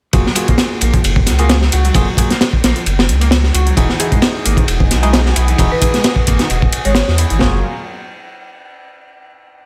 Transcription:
0.13 F#1 F#3 A#3 F4 F#4 G#4, kick, closed hi-hat, ride
0.27 snare
0.35 F#3 A#3 F4 F#4 G#4, closed hi-hat, ride
0.48 A#3, kick, closed hi-hat
0.58 snare, closed hi-hat, ride
0.81 A#1 A#3, closed hi-hat, ride
0.94 F3, kick, closed hi-hat
1.04 F#1, closed hi-hat, ride
1.16 kick
1.26 C#2, snare, closed hi-hat, ride
1.38 A#3 F4 F#4 G#4, closed hi-hat, ride
1.49 snare, closed hi-hat, ride
1.61 snare
1.72 C#2 F#4, closed hi-hat, ride
1.85 F#3, closed hi-hat
1.94 F#1 F#3 A#3 F4 F#4 G#4, kick, closed hi-hat, ride
2.17 F#3 A#3 F4 F#4 G#4, kick, closed hi-hat, ride
2.30 A#3, snare, closed hi-hat
2.41 snare, closed hi-hat, ride
2.53 kick
2.64 A#1 A#3, snare, closed hi-hat, ride
2.76 F3, closed hi-hat
2.86 F#1, closed hi-hat, ride
2.99 snare, ride
3.09 C#2, closed hi-hat
3.21 A#3, closed hi-hat, ride
3.31 snare, closed hi-hat, ride
3.43 snare
3.54 C#2 F#4, closed hi-hat, ride
3.66 F#3, closed hi-hat
3.77 E1 E3 D#4 E4 F#4 G#4 D#5, kick, closed hi-hat, ride
3.89 snare
3.99 E3 D#4 E4 F#4 G#4, closed hi-hat, ride
4.12 G#3, kick, closed hi-hat
4.22 snare, closed hi-hat, ride
4.45 G#1 A#3, closed hi-hat, ride
4.57 D#3, kick, closed hi-hat
4.68 E1, closed hi-hat, ride
4.80 kick
4.91 B1, snare, closed hi-hat, ride
5.03 G#3 D#4 E4 F#4 G#4, closed hi-hat, ride
5.13 snare, closed hi-hat, ride
5.26 snare
5.36 B1 E4, closed hi-hat, ride
5.48 E3, closed hi-hat
5.58 E1 E3 D#4 E4 F#4 G#4, kick, closed hi-hat, ride
5.72 B4
5.82 E3 D#4 E4 F#4 G#4, kick, closed hi-hat, ride
5.94 G#3, snare, closed hi-hat
6.04 snare, closed hi-hat, ride
6.16 kick
6.27 G#1 A#3, kick, closed hi-hat, ride
6.39 D#3, snare, closed hi-hat
6.50 E1, closed hi-hat, ride
6.62 kick
6.72 closed hi-hat, ride
6.85 G#1 G#3 C#5, closed hi-hat
6.95 C#5, snare, closed hi-hat, ride
7.08 E2, snare
7.18 E4, closed hi-hat, ride
7.30 G#1 E3, closed hi-hat
7.40 F#1 F#3 A#3 F4 F#4 G#4 A#4, kick, snare

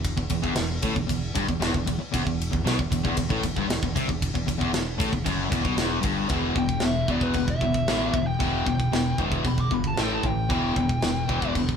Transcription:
Already playing: E1 E2
0.04 kick, ride
0.17 E1 E2, kick
0.30 E1 E2, kick, ride
0.42 E1 E2, kick
0.56 E1 E2, snare, ride
0.82 A1 A2, kick, ride
0.95 E1 E2, kick
1.07 E1 E2, kick, ride
1.35 G1 G2, kick, ride
1.48 E1 E2, kick
1.60 E1 E2, snare, ride
1.74 E1 E2, kick
1.86 E1 E2, kick, ride
1.99 muted distorted electric guitar stroke
2.12 E1 E2, kick, ride
2.24 E1 E2, kick
2.41 ride
2.51 E1 E2, kick
2.63 B1 B2, snare, ride
2.78 E1 E2, kick
2.91 E1 E2, kick, ride
3.04 E1 E2, kick
3.17 E1 E2, kick, ride
3.29 A1 A2, kick
3.43 E1 E2, kick, ride
3.57 G1 G2, kick
3.69 E1 E2, snare, ride
3.83 E1 E2, kick
3.96 C2 C3, kick, ride
4.08 E1 E2, kick
4.22 kick, ride
4.34 E1 E2, kick
4.46 E1 E2, kick, ride
4.58 E1 E2, kick
4.73 E1 E2, snare, ride
4.98 A1 A2, kick, ride
5.12 E1 E2, kick
5.25 F#1 F#2, kick, ride
5.51 E1 E2, kick, ride
5.64 B1 B2, kick
5.75 E1 E2, snare, ride
6.01 G1 G2, kick, ride
6.29 E1 E2 B2 E3, kick, china
6.56 E1 E2 B2 G5, kick
6.69 kick
6.80 E1 E2 B2, snare, china
6.86 E5
7.08 E1 E2 B2 E3 D5, kick
7.21 B4, kick
7.33 E1 E2 B2, kick, china
7.48 E5, kick
7.61 E1 E2 B2, kick
7.74 kick
7.87 A1 E2 B2 E3, snare, china
8.13 E1 E2 B2, kick
8.27 G5
8.39 E1 E2 B2 E3, kick, china
8.65 E1 E2 B2 G5, kick
8.80 kick
8.92 E1 E2 B2, snare, china
9.18 E1 E2 B2 E3, kick
9.32 kick
9.44 E1 E2 B2 B5, kick, china
9.58 D6, kick
9.71 G1 E2 B2 B5, kick
9.84 A5, kick
9.95 A1 A2 E3 A3, snare, china
10.00 G5
10.14 A5
10.23 A1 A2 E3 G5, kick
10.49 E1 E2 B2 E3 G5, kick, china
10.76 E1 E2 B2, kick
10.89 kick
11.01 E1 E2 B2, snare, china
11.28 E1 E2 B2 E3, kick
11.42 kick
11.55 E1 E2 B2, kick, china
11.69 kick

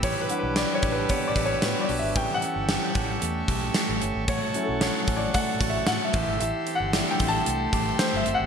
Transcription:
Already playing: G4 E6
0.03 A1 E3 G4 B4 C#5 D6, kick, closed hi-hat
0.21 B4
0.29 G3 D4 F#5, closed hi-hat
0.39 B4
0.43 B1
0.56 G4 D5, snare, closed hi-hat
0.74 C#5
0.83 A1 D4, kick, closed hi-hat
0.92 B4
1.09 B3 C#5, kick, closed hi-hat
1.28 D5
1.36 A1 G4, kick, closed hi-hat
1.46 C#5
1.62 A2 G3 B3 D4 F#4 B4, snare, closed hi-hat
1.81 D5
1.89 B1 D4, open hi-hat
1.99 G#1 E5
2.16 A1 E3 G3 B3 C#4 G4 A4 G5 C#6, kick, closed hi-hat
2.34 F#5
2.42 C#4, closed hi-hat
2.56 G1
2.69 G4, snare, closed hi-hat
2.95 A1 C#4, kick, closed hi-hat
3.21 E2 A3, closed hi-hat
3.48 B1 G4, kick, closed hi-hat
3.74 A3, snare, closed hi-hat
3.89 A1
4.01 G1 C#4, closed hi-hat
4.15 G#1
4.27 A1 A3 F#4 C#5 F#5 A5, kick, closed hi-hat
4.54 F#3 C#4 E4, closed hi-hat
4.63 A4
4.69 B1
4.81 F#4 C#5, snare, closed hi-hat
5.07 A1 C#4, kick, closed hi-hat
5.16 D5
5.34 A3 F#5, kick, closed hi-hat
5.61 A1 F#4, kick, closed hi-hat
5.70 E5
5.87 A2 A3 F#5, snare, closed hi-hat
6.05 E5
6.13 A1 E3 G4 C6 E6, kick, closed hi-hat
6.23 E5
6.27 G#1
6.40 A1 E3 G4 E5, closed hi-hat
6.67 C4, closed hi-hat
6.75 F#5
6.80 G1
6.93 A3 D4 E4 G4, snare, closed hi-hat
7.11 G5
7.20 A1 C4, kick, closed hi-hat
7.28 A5
7.46 C2 A3, closed hi-hat
7.73 A1 G4, kick, closed hi-hat
7.99 A3 C5, snare, closed hi-hat
8.13 G1 E5
8.26 G1 C4, closed hi-hat
8.34 F#5
8.40 G#1

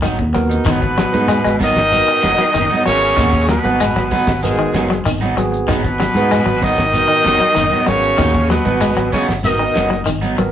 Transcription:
0.02 G#1 D#3 F#3 B3 D#4, closed hi-hat, high conga, shekere
0.19 D#2, muted clean electric guitar stroke, kick, low conga
0.33 F#3 B3 F#4 A#4, muted clean electric guitar stroke, kick, snare, closed hi-hat, low conga, shekere
0.49 D#4, muted clean electric guitar stroke, closed hi-hat, low conga
0.65 G#1 D#3 F#3 B3 D#4, kick, closed hi-hat, low conga, shekere
0.69 B2 B3 B4
0.82 muted clean electric guitar stroke, kick, closed hi-hat, low conga
0.97 F#3, muted clean electric guitar stroke, snare, closed hi-hat, shekere
1.12 G#2 B3 D#4 F#4 B4, closed hi-hat, high conga
1.28 G#3, muted clean electric guitar stroke, snare, closed hi-hat, shekere
1.44 G#1 G#3, muted clean electric guitar stroke, snare, closed hi-hat
1.59 D#3 F#3 B3 D#4, kick, open hi-hat, high conga, low conga, shekere
1.63 D#4 D#5
1.76 G#1, kick, snare
1.91 B3 F#4 A#4, muted clean electric guitar stroke, closed hi-hat, high conga, shekere
2.08 muted clean electric guitar stroke, closed hi-hat
2.22 F#1 F#3 B3 D#4, snare, closed hi-hat, high conga, shekere
2.38 F#3, muted clean electric guitar stroke, snare
2.54 F#1 D#3, snare, closed hi-hat, shekere
2.70 F#3 B3 D#4, muted fingered electric bass stroke, high conga
2.85 G#1 C#3 F#3 B3 C#4 F#4 A#4 C#5, muted clean electric guitar stroke, closed hi-hat, shekere
3.01 muted clean electric guitar stroke, closed hi-hat
3.17 D#2 F#3 B3 D#4, muted clean electric guitar stroke, kick, snare, closed hi-hat, low conga, shekere
3.32 muted clean electric guitar stroke, kick, closed hi-hat, low conga
3.48 B2 F#3 B3 B4, muted clean electric guitar stroke, snare, closed hi-hat, shekere
3.64 G#1 B3 D#4 F#4 B4, closed hi-hat, high conga
3.80 G#3, muted clean electric guitar stroke, snare, closed hi-hat, shekere
3.96 G#1 F#3, muted clean electric guitar stroke, snare, closed hi-hat
4.11 B2 F#3 B3 D#4 B4, kick, open hi-hat, high conga, low conga, shekere
4.27 G#1, kick, snare
4.42 G#2 G#3 B3 F#4 G#4 A#4, muted clean electric guitar stroke, snare, closed hi-hat, high conga, shekere
4.59 D#3
4.73 F#1 F#3 B3 D#4, snare, closed hi-hat, high conga, shekere
4.89 F#3, muted clean electric guitar stroke, snare
5.05 G#1 D#3, closed hi-hat, shekere
5.21 F#3 B3 D#4, closed hi-hat, high conga
5.36 G#1 F#3 B3 F#4 G#4, muted clean electric guitar stroke, closed hi-hat, high conga, shekere
5.52 muted clean electric guitar stroke, closed hi-hat
5.67 G#1 B2 D#3 F#3 B3 D#4 B4, kick, closed hi-hat, low conga, shekere
5.83 muted clean electric guitar stroke, kick, closed hi-hat, low conga
6.00 F#3, muted clean electric guitar stroke, snare, closed hi-hat, shekere
6.14 G#2 B3 D#4 F#4 B4, snare, closed hi-hat, high conga
6.31 G#3, muted clean electric guitar stroke, snare, closed hi-hat, shekere
6.46 G#1 F#3, muted clean electric guitar stroke, closed hi-hat
6.62 D#3 F#3 B3 D#4 D#5, kick, open hi-hat, high conga, low conga, shekere
6.78 G#1, kick, snare
6.93 B3 F#4 A#4, muted clean electric guitar stroke, closed hi-hat, high conga, shekere
7.08 D#3, closed hi-hat
7.24 F#1 F#3 B3 D#4, snare, closed hi-hat, high conga, shekere
7.40 F#3, muted clean electric guitar stroke, muted fingered electric bass stroke
7.55 F#1 D#3, closed hi-hat, shekere
7.71 F#3 B3, muted clean electric guitar stroke, muted fingered electric bass stroke, high conga
7.86 G#1 C#3 F#3 B3 C#4 F#4 A#4 C#5, muted clean electric guitar stroke, closed hi-hat, shekere
8.02 muted clean electric guitar stroke, closed hi-hat
8.17 D#2 D#3 F#3 D#4, muted clean electric guitar stroke, kick, closed hi-hat, low conga, shekere
8.34 muted clean electric guitar stroke, kick, closed hi-hat, low conga
8.49 B2 F#3 B3 B4, muted clean electric guitar stroke, snare, closed hi-hat, shekere
8.65 G#1 B3 D#4 F#4 B4, closed hi-hat, high conga
8.81 G#3, muted clean electric guitar stroke, closed hi-hat, shekere
8.97 G#1 F#3, muted clean electric guitar stroke, snare, closed hi-hat
9.12 C#3 F#3 B3 C#4 D#4 C#5, kick, snare, open hi-hat, high conga, low conga, shekere
9.29 G#1, kick, snare
9.43 D#3 B3 D#4 F#4 A#4 D#5, muted clean electric guitar stroke, snare, closed hi-hat, high conga, shekere
9.59 D#3
9.74 F#1 F#3 B3 D#4, snare, closed hi-hat, high conga, shekere
9.90 F#3, muted clean electric guitar stroke, snare
10.05 G#1 D#3, closed hi-hat, shekere
10.21 F#3 B3 D#4, closed hi-hat, high conga
10.37 G#1 F#3 B3 F#4 A#4, muted clean electric guitar stroke, closed hi-hat, high conga, shekere

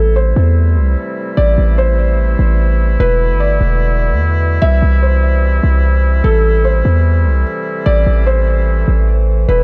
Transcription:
Already playing: A1 C3 E3 G3 A3 E4 A4
0.16 C5
0.36 E2
0.77 C2
1.37 A1 D5
1.58 A1
1.78 C5
2.39 A1
3.00 E1 B2 D3 B4
3.30 G1
3.40 D5
3.61 E1
4.11 E2
4.62 C2 C3 E3 G3 E5
4.82 C2
5.02 C5
5.63 C2
6.24 A1 C3 A3 A4
6.65 C5
6.85 E2
7.26 C2
7.86 A1 D5
8.07 A1
8.27 C5
8.88 A1
9.49 E1 D3 B3 E4 B4

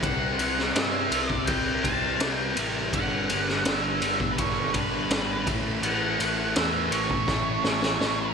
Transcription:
0.02 C2 C3 G3 C4 E4 F#5, kick, ride
0.39 C2 C3 G3 C4 E4, ride
0.58 snare
0.73 G2 C3 G3 C4 E5, snare, ride
0.78 E4
1.11 C2 C3 G3 C4 E4, ride
1.29 D5, kick
1.46 C2 C3 G5, kick, ride
1.50 G3 C4 E4
1.83 C2 C3 G3 C4 A5, kick, ride
1.87 E4
2.19 C2 C3 G3 C4 E4, snare, ride
2.34 G5
2.57 A1 C3 G3 C4 E4, ride
2.93 G1 G2 D3 G3 B3 D4 F#5, kick, ride
3.29 G1 G2 D3 G3 B3 D4, ride
3.48 snare
3.65 G1 G2 D3 G3 B3 D4 E5, snare, ride
4.01 G1 G2 D3 G3 B3 D4, ride
4.20 kick
4.32 B4
4.38 G1 G2 D3 G3 B3 D4 C#5, kick, ride
4.73 G1 G2 D3 G3 B3 D4 B4, kick, ride
5.10 G#1 G2 D3 G3 B3 D4, snare, ride
5.46 A1 A2 E3 A3 C#4 E4, kick, ride
5.83 A1 A2 E3 A3 C#4 E4 F#5, ride
6.20 A1 A2 E3 A3 C#4 E4, ride
6.56 E2 A2 E3 A3 C#4 E4 E5, snare, ride
6.90 A1 A2 E3 A3 C#4 E4 C#5, ride
7.10 kick
7.27 A1 A2 E3 A3 C#4 E4, kick, snare
7.64 A1 A2 E3 A3 C#4 E4, snare
7.82 snare
8.00 A1 A2 E3 A3 C#4 E4, snare

